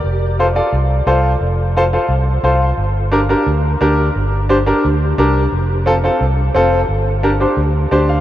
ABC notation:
X:1
M:4/4
L:1/8
Q:1/4=175
K:Gm
V:1 name="Upright piano"
z2 [FAc] [FAd] z2 [FAc] z | z2 [FAc] [FAc] z2 [FAc] z | z2 [DGB] [DGB] z2 [DGB] z | z2 [DGc] [DGB] z2 [DGB] z |
z2 [CFA] [CFA] z2 [CFA] z | z2 [DGB] [DGc] z2 [DGcd] f |]
V:2 name="Fingered electric bass" clef=bass
F,,,4 C,,2 C,,2 | F,,,4 C,,2 C,,2 | G,,,4 D,,2 D,,2 | G,,,4 D,,2 C,,2 |
F,,,4 C,,2 F,,,2 | G,,,4 D,,2 D,,2 |]